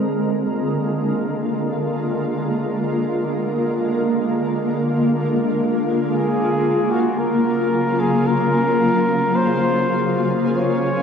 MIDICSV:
0, 0, Header, 1, 3, 480
1, 0, Start_track
1, 0, Tempo, 500000
1, 10584, End_track
2, 0, Start_track
2, 0, Title_t, "Flugelhorn"
2, 0, Program_c, 0, 56
2, 5862, Note_on_c, 0, 68, 89
2, 6637, Note_on_c, 0, 66, 77
2, 6652, Note_off_c, 0, 68, 0
2, 6893, Note_on_c, 0, 70, 86
2, 6908, Note_off_c, 0, 66, 0
2, 7679, Note_on_c, 0, 68, 80
2, 7693, Note_off_c, 0, 70, 0
2, 7944, Note_on_c, 0, 70, 93
2, 7958, Note_off_c, 0, 68, 0
2, 8983, Note_on_c, 0, 72, 95
2, 8997, Note_off_c, 0, 70, 0
2, 9780, Note_off_c, 0, 72, 0
2, 10035, Note_on_c, 0, 73, 108
2, 10584, Note_off_c, 0, 73, 0
2, 10584, End_track
3, 0, Start_track
3, 0, Title_t, "Ambient pad"
3, 0, Program_c, 1, 92
3, 0, Note_on_c, 1, 50, 64
3, 0, Note_on_c, 1, 56, 77
3, 0, Note_on_c, 1, 58, 81
3, 0, Note_on_c, 1, 60, 68
3, 0, Note_on_c, 1, 65, 69
3, 0, Note_on_c, 1, 70, 74
3, 188, Note_off_c, 1, 60, 0
3, 5854, Note_on_c, 1, 49, 77
3, 5860, Note_off_c, 1, 50, 0
3, 5868, Note_off_c, 1, 56, 0
3, 6100, Note_on_c, 1, 54, 65
3, 7738, Note_on_c, 1, 68, 70
3, 9222, Note_off_c, 1, 70, 0
3, 10584, Note_off_c, 1, 49, 0
3, 10584, Note_off_c, 1, 54, 0
3, 10584, Note_off_c, 1, 58, 0
3, 10584, Note_off_c, 1, 65, 0
3, 10584, Note_off_c, 1, 68, 0
3, 10584, End_track
0, 0, End_of_file